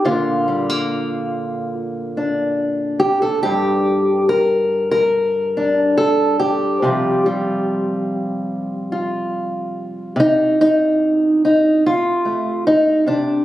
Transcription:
0.05 3.39 A#2 medium
0.05 6.83 D3 medium
0.05 0.47 A#3 medium
0.05 1.73 F4 medium
0.48 0.69 G3 soft
0.69 3.45 A#3 soft
2.17 3.39 D4 soft
3.00 3.21 G4 medium
3.22 3.42 A4 medium
3.43 6.78 G2 medium
3.43 4.28 G4 loud
4.29 4.90 A#4 medium
4.91 5.97 A#4 loud
5.57 6.77 D4 soft
5.97 6.39 A4 loud
6.39 10.16 G4 medium
6.82 10.11 C3 medium
6.82 10.23 F3 medium
6.82 7.25 G3 medium
6.82 7.26 F4 medium
7.26 10.17 G3 soft
7.26 8.92 F4 soft
8.92 10.19 F4 soft
10.16 13.05 C3 medium
10.16 10.59 D#4 loud
10.61 11.43 D#4 loud
11.45 11.85 D#4 medium
11.86 12.66 F4 loud
12.25 13.44 A3 soft
12.67 13.07 D#4 loud
13.06 13.45 C3 medium
13.06 13.45 D4 medium

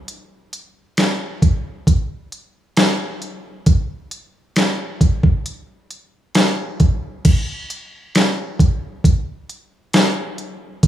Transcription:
0.08 closed hi-hat medium
0.53 closed hi-hat medium
0.97 snare loud
0.97 closed hi-hat medium
1.42 kick medium
1.42 closed hi-hat medium
1.87 kick medium
1.87 closed hi-hat medium
2.32 closed hi-hat medium
2.77 snare loud
2.77 closed hi-hat medium
3.22 closed hi-hat medium
3.66 kick medium
3.66 closed hi-hat medium
4.11 closed hi-hat medium
4.56 snare loud
4.56 closed hi-hat medium
5.01 kick medium
5.01 closed hi-hat medium
5.23 kick medium
5.46 closed hi-hat medium
5.91 closed hi-hat medium
6.35 snare loud
6.35 closed hi-hat medium
6.80 kick medium
6.80 closed hi-hat medium
7.25 kick medium
7.25 closed hi-hat medium
7.25 crash medium
7.70 closed hi-hat medium
8.15 snare loud
8.15 closed hi-hat medium
8.59 kick medium
8.59 closed hi-hat medium
9.04 kick medium
9.04 closed hi-hat medium
9.49 closed hi-hat medium
9.93 snare loud
9.93 closed hi-hat medium
10.38 closed hi-hat medium
10.83 kick medium
10.83 closed hi-hat medium

